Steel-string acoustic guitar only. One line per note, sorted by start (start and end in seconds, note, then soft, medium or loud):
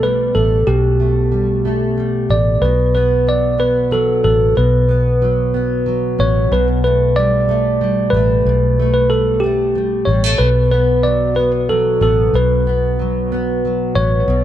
0.00 0.66 B2 medium
0.00 1.31 G3 soft
0.00 0.34 A3 soft
0.35 0.98 A3 soft
0.67 2.61 B2 medium
1.00 1.64 A3 soft
1.32 1.96 G3 soft
1.65 2.28 A3 soft
1.98 2.69 G3 soft
2.29 2.69 A3 soft
2.63 4.56 B2 medium
2.94 3.58 B3 soft
3.27 3.90 F#3 soft
3.58 4.23 B3 soft
3.91 5.21 F#3 soft
4.24 4.88 B3 soft
4.57 6.50 B2 medium
4.89 5.54 B3 soft
5.22 5.85 F#3 soft
5.54 6.18 B3 soft
5.86 6.57 F#3 soft
6.19 6.84 B3 soft
6.52 8.45 B2 medium
6.84 7.47 A3 soft
7.17 7.80 G3 soft
7.49 8.13 A3 soft
7.81 9.10 G3 soft
8.14 8.78 A3 soft
8.46 10.38 B2 medium
8.79 9.42 A3 soft
9.11 9.74 G3 soft
9.44 10.07 A3 soft
9.75 10.07 G3 soft
10.08 10.24 G3 soft
10.24 10.46 A3 soft
10.40 12.33 B2 medium
10.71 11.36 B3 soft
11.04 11.68 F#3 soft
11.37 12.01 B3 soft
11.69 12.98 F#3 soft
12.01 12.67 B3 soft
12.34 14.27 B2 medium
12.67 13.32 B3 soft
12.99 13.64 F#3 soft
13.32 13.96 B3 soft
13.65 14.36 F#3 soft
13.97 14.44 B3 soft
14.28 14.44 B2 medium